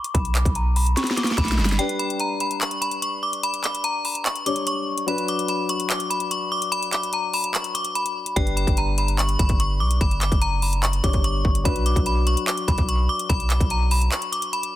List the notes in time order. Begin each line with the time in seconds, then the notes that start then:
0.04 closed hi-hat
0.14 B1 B5, kick, closed hi-hat
0.25 closed hi-hat
0.35 D6, clap, closed hi-hat
0.45 B1, kick, closed hi-hat
0.55 A#5, closed hi-hat
0.76 B5, open hi-hat
0.87 closed hi-hat
0.97 C#6, snare, closed hi-hat
1.04 snare, closed hi-hat
1.11 snare
1.17 D6, snare, closed hi-hat
1.24 snare, closed hi-hat
1.31 snare
1.38 B1 B5, kick, snare, closed hi-hat
1.45 snare, closed hi-hat
1.52 snare
1.58 G1, snare
1.65 snare, closed hi-hat
1.72 snare
1.79 G3 D4 B4 G5, closed hi-hat
1.89 closed hi-hat
1.99 B5, closed hi-hat
2.10 closed hi-hat
2.20 A#5, closed hi-hat
2.40 B5, closed hi-hat
2.51 closed hi-hat
2.61 C#6, clap, closed hi-hat
2.71 closed hi-hat
2.82 B5, closed hi-hat
2.91 closed hi-hat
3.02 C#6, closed hi-hat
3.23 D6
3.33 closed hi-hat
3.43 B5, closed hi-hat
3.54 closed hi-hat
3.64 D6, clap, closed hi-hat
3.75 closed hi-hat
3.84 A#5, closed hi-hat
4.05 B5, open hi-hat
4.15 closed hi-hat
4.26 C#6, clap, closed hi-hat
4.36 closed hi-hat
4.46 G3 D4 C#5 D6, closed hi-hat
4.56 closed hi-hat
4.67 C#6, closed hi-hat
4.98 closed hi-hat
5.06 F#3 D4 B4 B5, closed hi-hat
5.18 closed hi-hat
5.28 D6, closed hi-hat
5.39 closed hi-hat
5.48 B5, closed hi-hat
5.69 C#6, closed hi-hat
5.80 closed hi-hat
5.90 D6, clap, closed hi-hat
6.00 closed hi-hat
6.10 B5, closed hi-hat
6.20 closed hi-hat
6.31 C#6, closed hi-hat
6.52 D6
6.62 closed hi-hat
6.72 B5, closed hi-hat
6.83 closed hi-hat
6.93 D6, clap, closed hi-hat
7.03 closed hi-hat
7.13 A#5, closed hi-hat
7.33 B5, open hi-hat
7.44 closed hi-hat
7.54 C#6, clap, closed hi-hat
7.64 closed hi-hat
7.75 D6, closed hi-hat
7.85 closed hi-hat
7.95 B5, closed hi-hat
8.06 closed hi-hat
8.26 closed hi-hat
8.36 G1 G3 D4 B4 G5, kick, closed hi-hat
8.47 closed hi-hat
8.57 B5, closed hi-hat
8.67 G1, kick, closed hi-hat
8.77 A#5, closed hi-hat
8.98 B5, closed hi-hat
9.08 closed hi-hat
9.19 C#6, clap, closed hi-hat
9.29 closed hi-hat
9.39 G1 B5, kick, closed hi-hat
9.49 kick, closed hi-hat
9.60 C#6, closed hi-hat
9.80 B1 D6
9.91 closed hi-hat
10.01 G1 B5, kick, closed hi-hat
10.11 closed hi-hat
10.21 D6, clap, closed hi-hat
10.32 F#1, kick, closed hi-hat
10.42 A#5, closed hi-hat
10.62 B5, open hi-hat
10.73 closed hi-hat
10.83 C#6, clap, closed hi-hat
10.93 closed hi-hat
11.03 G1 G3 D4 C#5 D6, kick, closed hi-hat
11.13 kick, closed hi-hat
11.24 C#6, closed hi-hat
11.45 G1, kick
11.55 closed hi-hat
11.64 B1 F#3 D4 B4 B5, kick, closed hi-hat
11.76 closed hi-hat
11.86 D6, closed hi-hat
11.96 B1, kick, closed hi-hat
12.06 B5, closed hi-hat
12.27 C#6, closed hi-hat
12.37 closed hi-hat
12.48 D6, clap, closed hi-hat
12.57 closed hi-hat
12.68 B1 B5, kick, closed hi-hat
12.78 B1, kick, closed hi-hat
12.89 C#6, closed hi-hat
13.09 D6
13.19 closed hi-hat
13.29 B1 B5, kick, closed hi-hat
13.40 closed hi-hat
13.50 D6, clap, closed hi-hat
13.60 B1, kick, closed hi-hat
13.70 A#5, closed hi-hat
13.91 B5, open hi-hat
14.02 closed hi-hat
14.12 C#6, clap, closed hi-hat
14.22 closed hi-hat
14.32 D6, closed hi-hat
14.42 closed hi-hat
14.53 B5, closed hi-hat
14.63 closed hi-hat